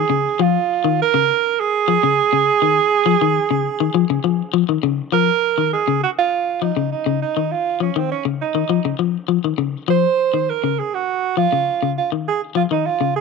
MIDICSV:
0, 0, Header, 1, 3, 480
1, 0, Start_track
1, 0, Key_signature, -5, "minor"
1, 0, Tempo, 592885
1, 326, Time_signature, 4, 2, 24, 8
1, 10692, End_track
2, 0, Start_track
2, 0, Title_t, "Alto saxophone"
2, 0, Program_c, 0, 65
2, 0, Note_on_c, 0, 68, 96
2, 334, Note_on_c, 0, 65, 87
2, 346, Note_off_c, 0, 68, 0
2, 808, Note_off_c, 0, 65, 0
2, 823, Note_on_c, 0, 70, 106
2, 1296, Note_on_c, 0, 68, 113
2, 1308, Note_off_c, 0, 70, 0
2, 3681, Note_off_c, 0, 68, 0
2, 4157, Note_on_c, 0, 70, 108
2, 4603, Note_off_c, 0, 70, 0
2, 4639, Note_on_c, 0, 68, 91
2, 4860, Note_off_c, 0, 68, 0
2, 4884, Note_on_c, 0, 66, 76
2, 4938, Note_off_c, 0, 66, 0
2, 5007, Note_on_c, 0, 65, 101
2, 5361, Note_on_c, 0, 63, 81
2, 5373, Note_off_c, 0, 65, 0
2, 5595, Note_off_c, 0, 63, 0
2, 5600, Note_on_c, 0, 63, 80
2, 5821, Note_off_c, 0, 63, 0
2, 5847, Note_on_c, 0, 63, 85
2, 6085, Note_on_c, 0, 65, 90
2, 6097, Note_off_c, 0, 63, 0
2, 6321, Note_off_c, 0, 65, 0
2, 6331, Note_on_c, 0, 61, 73
2, 6460, Note_on_c, 0, 60, 81
2, 6472, Note_off_c, 0, 61, 0
2, 6566, Note_off_c, 0, 60, 0
2, 6570, Note_on_c, 0, 61, 69
2, 6676, Note_off_c, 0, 61, 0
2, 6814, Note_on_c, 0, 63, 61
2, 7255, Note_off_c, 0, 63, 0
2, 8016, Note_on_c, 0, 72, 112
2, 8496, Note_on_c, 0, 70, 86
2, 8508, Note_off_c, 0, 72, 0
2, 8738, Note_on_c, 0, 68, 82
2, 8751, Note_off_c, 0, 70, 0
2, 8859, Note_on_c, 0, 66, 97
2, 8872, Note_off_c, 0, 68, 0
2, 9208, Note_off_c, 0, 66, 0
2, 9212, Note_on_c, 0, 65, 92
2, 9657, Note_off_c, 0, 65, 0
2, 9698, Note_on_c, 0, 65, 66
2, 9803, Note_off_c, 0, 65, 0
2, 9942, Note_on_c, 0, 68, 82
2, 10047, Note_off_c, 0, 68, 0
2, 10173, Note_on_c, 0, 65, 66
2, 10228, Note_off_c, 0, 65, 0
2, 10296, Note_on_c, 0, 63, 81
2, 10411, Note_on_c, 0, 65, 77
2, 10423, Note_off_c, 0, 63, 0
2, 10649, Note_off_c, 0, 65, 0
2, 10654, Note_on_c, 0, 68, 73
2, 10692, Note_off_c, 0, 68, 0
2, 10692, End_track
3, 0, Start_track
3, 0, Title_t, "Clean electric guitar"
3, 0, Program_c, 1, 27
3, 78, Note_on_c, 1, 49, 78
3, 220, Note_off_c, 1, 49, 0
3, 319, Note_on_c, 1, 53, 94
3, 460, Note_off_c, 1, 53, 0
3, 684, Note_on_c, 1, 51, 76
3, 824, Note_off_c, 1, 51, 0
3, 924, Note_on_c, 1, 49, 73
3, 1064, Note_off_c, 1, 49, 0
3, 1521, Note_on_c, 1, 53, 73
3, 1594, Note_off_c, 1, 53, 0
3, 1646, Note_on_c, 1, 49, 72
3, 1785, Note_off_c, 1, 49, 0
3, 1884, Note_on_c, 1, 49, 70
3, 2023, Note_off_c, 1, 49, 0
3, 2121, Note_on_c, 1, 51, 67
3, 2261, Note_off_c, 1, 51, 0
3, 2476, Note_on_c, 1, 53, 74
3, 2549, Note_off_c, 1, 53, 0
3, 2602, Note_on_c, 1, 51, 78
3, 2741, Note_off_c, 1, 51, 0
3, 2838, Note_on_c, 1, 49, 69
3, 2978, Note_off_c, 1, 49, 0
3, 3079, Note_on_c, 1, 51, 76
3, 3146, Note_off_c, 1, 51, 0
3, 3194, Note_on_c, 1, 53, 96
3, 3267, Note_off_c, 1, 53, 0
3, 3319, Note_on_c, 1, 49, 72
3, 3386, Note_off_c, 1, 49, 0
3, 3434, Note_on_c, 1, 53, 79
3, 3573, Note_off_c, 1, 53, 0
3, 3671, Note_on_c, 1, 53, 84
3, 3745, Note_off_c, 1, 53, 0
3, 3796, Note_on_c, 1, 51, 67
3, 3863, Note_off_c, 1, 51, 0
3, 3912, Note_on_c, 1, 49, 76
3, 4052, Note_off_c, 1, 49, 0
3, 4148, Note_on_c, 1, 53, 83
3, 4289, Note_off_c, 1, 53, 0
3, 4515, Note_on_c, 1, 51, 69
3, 4656, Note_off_c, 1, 51, 0
3, 4758, Note_on_c, 1, 49, 67
3, 4898, Note_off_c, 1, 49, 0
3, 5358, Note_on_c, 1, 53, 63
3, 5430, Note_off_c, 1, 53, 0
3, 5478, Note_on_c, 1, 49, 66
3, 5618, Note_off_c, 1, 49, 0
3, 5718, Note_on_c, 1, 49, 71
3, 5859, Note_off_c, 1, 49, 0
3, 5964, Note_on_c, 1, 51, 62
3, 6103, Note_off_c, 1, 51, 0
3, 6318, Note_on_c, 1, 53, 64
3, 6390, Note_off_c, 1, 53, 0
3, 6444, Note_on_c, 1, 51, 68
3, 6584, Note_off_c, 1, 51, 0
3, 6681, Note_on_c, 1, 49, 67
3, 6821, Note_off_c, 1, 49, 0
3, 6920, Note_on_c, 1, 51, 73
3, 6987, Note_off_c, 1, 51, 0
3, 7040, Note_on_c, 1, 53, 84
3, 7113, Note_off_c, 1, 53, 0
3, 7165, Note_on_c, 1, 49, 68
3, 7232, Note_off_c, 1, 49, 0
3, 7279, Note_on_c, 1, 53, 64
3, 7419, Note_off_c, 1, 53, 0
3, 7516, Note_on_c, 1, 53, 75
3, 7590, Note_off_c, 1, 53, 0
3, 7646, Note_on_c, 1, 51, 64
3, 7712, Note_off_c, 1, 51, 0
3, 7757, Note_on_c, 1, 49, 76
3, 7897, Note_off_c, 1, 49, 0
3, 7999, Note_on_c, 1, 53, 83
3, 8139, Note_off_c, 1, 53, 0
3, 8368, Note_on_c, 1, 51, 63
3, 8508, Note_off_c, 1, 51, 0
3, 8611, Note_on_c, 1, 49, 63
3, 8750, Note_off_c, 1, 49, 0
3, 9206, Note_on_c, 1, 53, 72
3, 9278, Note_off_c, 1, 53, 0
3, 9330, Note_on_c, 1, 49, 64
3, 9470, Note_off_c, 1, 49, 0
3, 9573, Note_on_c, 1, 49, 66
3, 9712, Note_off_c, 1, 49, 0
3, 9813, Note_on_c, 1, 51, 60
3, 9952, Note_off_c, 1, 51, 0
3, 10162, Note_on_c, 1, 53, 70
3, 10237, Note_off_c, 1, 53, 0
3, 10290, Note_on_c, 1, 51, 69
3, 10430, Note_off_c, 1, 51, 0
3, 10530, Note_on_c, 1, 49, 63
3, 10670, Note_off_c, 1, 49, 0
3, 10692, End_track
0, 0, End_of_file